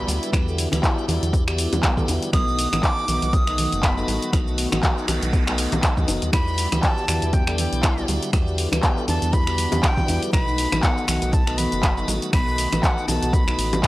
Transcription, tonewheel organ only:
Already playing: B3 E4 F#4 G4 D5
0.33 B3 E4 F#4 G4 D5
0.72 B3 E4 F#4 G4 D5
1.08 B3 E4 F#4 G4 D5
1.47 B3 E4 F#4 G4 D5
1.97 B3 E4 F#4 G4 D5
2.33 B3 D#4 F#4 A4 D#5
2.72 B3 D#4 F#4 A4 D#5
3.08 B3 D#4 F#4 A4 D#5
3.47 B3 D#4 F#4 A4 D#5
3.97 B3 D#4 F#4 A4 D#5
4.33 B3 D#4 F#4 A4 D#5
4.72 B3 D#4 F#4 A4 D#5
5.08 B3 D#4 F#4 A4 D#5
5.47 B3 D#4 F#4 A4 D#5
5.97 B3 D#4 F#4 A4 D#5
6.33 B3 E4 F#4 G4 D5
6.72 B3 E4 F#4 G4 D5
7.08 B3 E4 F#4 G4 D5
7.47 B3 D4 E4 G4 D5
7.98 B3 E4 F#4 G4 D5
8.33 B3 E4 F#4 G4 D5
8.72 B3 E4 F#4 G4 D5
9.08 B3 E4 F#4 G4 D5
9.48 B3 E4 F#4 G4 D5
9.97 B3 E4 F#4 G4 D5
10.33 B3 D#4 F#4 A4 D#5
10.72 B3 D#4 F#4 A4 D#5
11.08 B3 D#4 F#4 A4 D#5
11.47 B3 D#4 F#4 A4 D#5
11.97 B3 D#4 F#4 A4 D#5
12.33 B3 D#4 F#4 A4 D#5
12.72 B3 D#4 F#4 A4 D#5
13.08 B3 D#4 F#4 A4 D#5
13.47 B3 D#4 F#4 A4 D#5

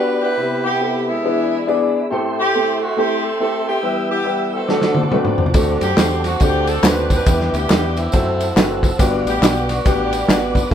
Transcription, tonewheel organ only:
Already playing: G4 D5 F#5 B5
0.37 B4 E5 B5
1.24 G#4 D5
2.10 A4 E5 G5 C6
3.83 B4 E6
4.67 C5 F#5 A5 D6
7.26 B4 E5 G5 D6
8.12 C5 F#5 A5 E6
8.98 B4 D5 F#5 D6

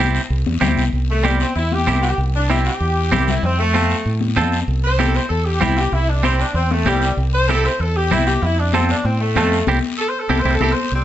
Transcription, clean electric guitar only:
0.00 C4 E4 G4
0.61 C4 E4 G4
1.24 C4 E4 G4
1.87 C4 E4 G4
2.50 C4 E4 G4
3.12 C4 E4 G4
3.74 C4 F4 A4
4.36 C4 F4 A4
4.99 C4 E4 G4
5.61 C4 E4 G4
6.23 C4 E4 G4
6.86 C4 E4 G4
7.49 C4 E4 G4
8.11 C4 E4 G4
8.74 C4 F4 A4
9.36 C4 F4 A4
9.68 C4 E4 G4
10.30 C4 E4 G4
10.45 C4 E4 G4
10.61 C4 E4 G4

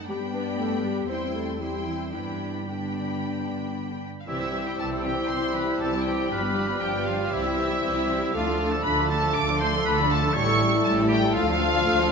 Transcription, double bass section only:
0.09 G2
1.09 E2
2.13 G2
4.28 C2
4.79 C2
5.30 C2
5.80 C2
6.32 G1
6.82 G1
7.33 C2
7.84 C2
8.35 D2
8.86 D2
9.37 D2
9.87 D2
10.37 A1
10.87 A1
11.36 D2
11.85 D2

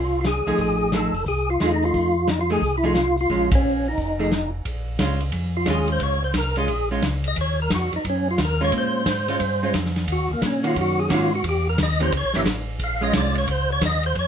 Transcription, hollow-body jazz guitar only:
0.47 F3 A3 D#4 G#4
0.93 F3 A3 D#4 G#4
1.61 A3 D#4 G#4
2.50 F3 A3 D#4 G#4
2.83 F3 A3 D#4 G#4
3.30 F3 G#3 C#4
4.19 F3 A3 D#4 G#4
5.00 G#3 C#4 F4
5.66 G#3 C#4 F4
6.57 G#3 C#4 F4
6.91 G#3 C#4 F4
8.61 G#3 C#4 F4
9.28 G#3 C#4 F4
9.63 G#3 C#4 F4
10.63 D#3 A#3 C#4 F#4
11.09 D#3 A#3 C#4 F#4
12.00 E3 A#3 C#4 G4
12.35 E3 A#3 C#4 G4
13.01 G#3 C#4 F4

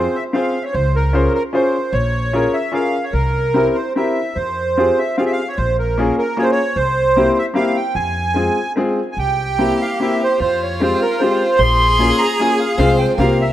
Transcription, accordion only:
Already playing: C5
0.15 E5
0.33 F5
0.62 C#5 E5
0.73 C5
0.96 A#4
1.34 A#4
1.55 C5
1.93 C#5
2.54 E5
2.74 F5
3.04 C#5
3.13 A#4
3.75 C5
3.96 E5
4.35 C5
4.99 E5
5.17 F5
5.25 E5
5.32 F5
5.48 C#5
5.57 C5
5.79 A#4
6.18 A#4
6.38 C#5
6.43 C5
6.52 C#5
6.76 C5
7.38 E5
7.55 F5
7.76 G5
7.95 G#5
9.12 G#5
9.19 G5
9.81 F5
10.01 E5
10.23 C5
10.41 C5
10.63 C#5
10.83 C5
11.02 A#4
11.19 C5
11.58 C6
12.18 A#5
12.39 G#5
12.60 F5
12.77 F5
12.98 G5
13.18 F5
13.41 E5

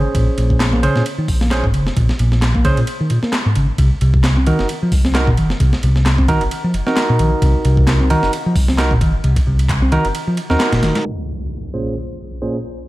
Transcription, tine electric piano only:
Already playing: C#4 G#4 C5
0.83 C#4 G#4 C5
1.51 C#4 G#4 C5
2.65 C#4 G#4 C5
4.47 D#4 F#4 A#4
5.15 D#4 F#4 A#4
6.28 D#4 F#4 A#4
6.87 D#4 F#4 A#4
8.10 D#4 F#4 A#4
8.78 D#4 F#4 A#4
9.92 D#4 F#4 A#4
10.50 D#4 F#4 A#4
11.74 A#2 C#4 G#4 C5
12.42 A#2 C#4 G#4 C5

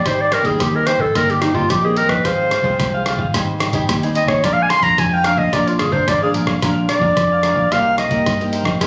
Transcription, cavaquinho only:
0.05 G4 C5 D#5 G#5
0.32 G4 C5 D#5 G#5
0.45 G4 C5 D#5 G#5
0.75 C5 D#5 G#5
0.87 G4 C5 D#5 G#5
0.99 C5 D#5 G#5
1.15 D#4 G4 C5 D#5
1.54 D#4 G4 C5 D#5
1.70 D#4 G4 C5 D#5
1.84 G4 C5 D#5
1.96 D#4 G4 C5 D#5
2.09 G4 C5 D#5
2.24 F4 G#4 C5 F5
2.51 F4 G#4 C5 F5
2.64 F4 G#4 C5 F5
2.94 G#4 C5 F5
3.06 F4 G#4 C5 F5
3.19 G#4 C5 F5
3.35 C5 D#5 G#5
3.74 G4 C5 D#5 G#5
3.89 G4 C5 D#5 G#5
4.03 C5 D#5 G#5
4.15 G4 C5 D#5 G#5
4.28 C5 D#5 G#5
4.43 D4 A#4 F5 G#5
4.69 D4 A#4 F5 G#5
4.82 D4 A#4 F5 G#5
5.12 A#4 F5 G#5
5.24 D4 A#4 F5 G#5
5.37 A#4 F5 G#5
5.53 D4 A#4 F5 G#5
5.92 D4 A#4 F5 G#5
6.08 D4 A#4 F5 G#5
6.22 A#4 F5 G#5
6.34 D4 A#4 F5 G#5
6.46 A#4 F5 G#5
6.62 D4 A#4 F5 G#5
6.88 D4 A#4 F5 G#5
7.01 D4 A#4 F5 G#5
7.31 A#4 F5 G#5
7.43 D4 A#4 F5 G#5
7.56 A#4 F5 G#5
7.71 D#4 A#4 C5 D#5
8.11 D#4 A#4 C5 D#5
8.26 D#4 A#4 C5 D#5
8.40 A#4 C5 D#5
8.52 D#4 A#4 C5 D#5
8.65 A#4 C5 D#5
8.81 G#4 A#4 D#5 G#5

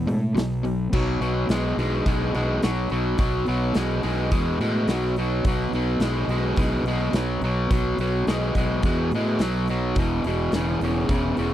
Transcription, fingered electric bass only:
0.06 A2
0.35 B1
0.92 B1
1.20 B1
1.49 B1
1.77 B1
2.06 B1
2.35 B1
2.64 B1
2.91 B1
3.19 B1
3.48 B1
3.75 B1
4.04 B1
4.32 E2
4.59 A2
4.87 B1
5.45 B1
5.71 B1
5.99 B1
6.28 B1
6.57 B1
6.83 B1
7.13 B1
7.41 B1
7.71 B1
7.98 B1
8.27 B1
8.55 B1
8.83 E2
9.11 A2
9.39 B1
9.96 E1
10.24 E1
10.53 E1
10.80 E1
11.09 E1
11.38 E1

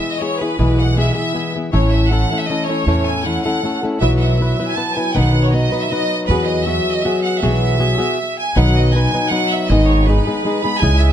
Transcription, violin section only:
Already playing: E5
0.11 D#5
0.21 C#5
0.40 B4
0.79 F#5
0.98 E5
1.16 E5
1.73 C#5
1.93 E5
2.10 F#5
2.38 E5
2.47 D#5
2.67 C#5
3.05 G#5
3.24 F#5
3.43 F#5
4.00 E5
4.16 E5 F#5
4.67 G#5
4.75 A5
4.95 G#5
5.14 F#5
5.44 C#5
5.52 D#5
5.81 E5
5.90 D#5
6.27 B4
6.46 D#5
6.64 E5
6.93 D#5
7.02 E5
7.22 F#5
7.40 E5
8.39 G#5
8.57 F#5
8.76 D#5
8.94 G#5
9.30 F#5
9.49 E5
9.69 D#5
9.87 C#5
10.05 B4
10.62 B5
10.78 G#5
10.99 E5

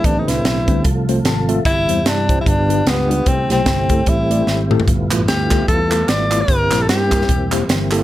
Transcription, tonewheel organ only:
Already playing: B3
0.04 D3 A3 C4 G4
0.84 C3 F3 F4 A4
1.65 C3 E3 G3 E4 G4
2.45 B3 D4 F4
3.26 A3 C4 E4
4.89 B3 F4
6.48 A#3 C4 G4

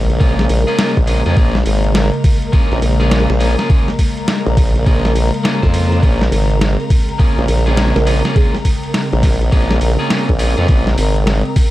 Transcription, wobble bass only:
Already playing: A#1
0.21 A#1
0.50 A#1
0.97 A#1
1.26 F2
1.37 A#1
1.66 G#1
2.72 A#1
2.82 A#1
3.30 A#1
4.46 A#1
4.87 A#1
5.63 F2
6.03 A#1
6.32 G#1
7.38 A#1
7.48 A#1
7.96 A#1
9.13 A#1
9.53 A#1
9.82 A#1
10.29 A#1
10.58 F2
10.69 A#1
10.98 G#1

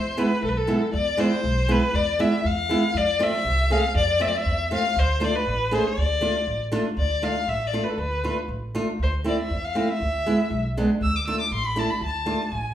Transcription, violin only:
Already playing: C5
0.18 B4
0.44 A4
0.49 B4
0.57 A4
0.94 D5
1.20 C5
1.71 B4
1.95 D5
2.21 E5
2.46 F5
2.97 D5
3.23 E5
3.73 F5
3.97 D5
4.21 E5
4.28 D5
4.37 E5
4.74 F5
4.99 C5
5.24 D5
5.35 B4
5.75 C5
5.86 D5
6.98 D5
7.23 F5
7.49 E5
7.67 D5
7.84 B4
7.90 A4
7.99 B4
9.03 C5
9.28 D5
9.41 E5
9.65 F5
9.81 F5
9.88 E5
11.03 E6
11.16 D6
11.27 E6
11.40 D6
11.54 C6
11.66 B5
11.79 A5
11.90 B5
12.04 A5
12.42 G#5

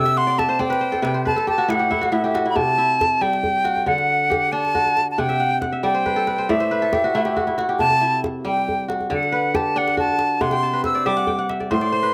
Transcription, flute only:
Already playing: E6
0.17 C6
0.39 A5
0.60 G5
1.27 A5
1.49 A5
1.70 F#5
2.13 E5
2.50 B5
2.56 A5
3.22 G5
3.88 F#5
4.52 A5
5.11 A5
5.20 G5
5.85 G5
6.50 E5
7.79 A5
8.45 G5
9.13 F#5
9.55 A5
9.78 F#5
9.99 A5
10.41 C6
10.85 E6
11.07 D6
11.71 C6

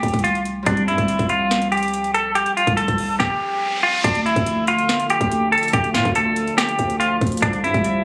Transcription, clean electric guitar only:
Already playing: G4
0.24 F4
0.67 D4
0.88 E4
1.30 F4
1.72 G4
2.14 A4
2.35 G4
2.57 F4
2.77 A4
3.20 G4
3.83 F4
4.04 D4
4.26 E4
4.68 F4
5.10 G4
5.52 A4
5.73 G4
5.94 F4
6.16 A4
6.58 G4
7.00 F4
7.42 D4
7.64 E4

